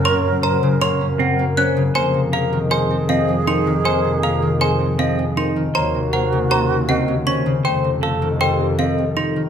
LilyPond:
<<
  \new Staff \with { instrumentName = "Xylophone" } { \time 5/4 \key f \phrygian \tempo 4 = 158 c'''8 r8 bes''8 r8 c'''8 r4. ges'''8 r8 | aes''8 r8 f''8 r8 aes''8 r8 f''8 r8 c'''8 r8 | aes''8 r8 f''8 r8 aes''8 r8 f''8 r8 c'''8 r8 | bes''8 r8 ges''8 r8 bes''8 r8 ges''8 r8 des'''8 r8 |
g''8 r8 f''8 r8 g''8 r8 f''8 r8 c'''8 r8 | }
  \new Staff \with { instrumentName = "Vibraphone" } { \time 5/4 \key f \phrygian des''8 r8 c''8 r8 bes'8 r8 ges''8 r8 c''8 r8 | c''8 r8 bes'8 r8 aes'8 r8 ees''8 r8 bes'8 r8 | c''8 r8 bes'8 r8 aes'8 r8 ees''8 r8 bes'8 r8 | des''8 r8 c''8 r8 bes'8 r8 ees''8 r8 c''8 r8 |
c''8 r8 a'8 r8 g'8 r8 ees''8 r8 a'8 r8 | }
  \new Staff \with { instrumentName = "Clean electric guitar" } { \time 5/4 \key f \phrygian des''8 r8 c''8 r8 des''8 r8 c'8 r8 des'8 r8 | c''8 r8 bes'8 r8 c''8 r8 c'8 r8 ees'8 r8 | c''8 r8 bes'8 r8 c''8 r8 c'8 r8 ees'8 r8 | c''8 r8 bes'8 r8 c''8 r8 c'8 r8 des'8 r8 |
c''8 r8 a'8 r8 c''8 r8 c'8 r8 ees'8 r8 | }
  \new Staff \with { instrumentName = "Alto flute" } { \time 5/4 \key f \phrygian bes'1~ bes'8 r8 | aes'1~ aes'4~ | aes'1~ aes'8 r8 | ges'1~ ges'8 r8 |
a'1~ a'8 r8 | }
  \new Staff \with { instrumentName = "Harp" } { \clef bass \time 5/4 \key f \phrygian <bes, des ges bes c'>4 c'8 des8 bes8 des'8 ges8 bes8 des'8 des8 | bes8 c8 bes8 ees8 aes8 c'8 f8 aes8 c'8 ees8 | bes8 c8 bes8 ees8 aes8 c'8 f8 aes8 c'8 ees8 | bes8 c8 bes8 des8 ges8 c'8 ees8 ges8 c'8 des8 |
a8 c8 a8 ees8 g8 c'8 f8 g8 c'8 ees8 | }
  \new Staff \with { instrumentName = "Double bass section" } { \clef bass \time 5/4 \key f \phrygian ges,1~ ges,4 | f,1~ f,4~ | f,1~ f,4 | ees,1~ ees,4 |
f,1~ f,4 | }
>>